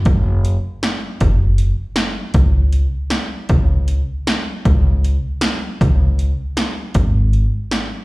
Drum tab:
HH |x-x-x-|x-x-x-|x-x-x-|x-x-x-|
SD |----o-|----o-|----o-|----o-|
BD |o-----|o-----|o-----|o-----|

HH |x-x-x-|x-x-x-|x-x-x-|
SD |----o-|----o-|----o-|
BD |o-----|o-----|o-----|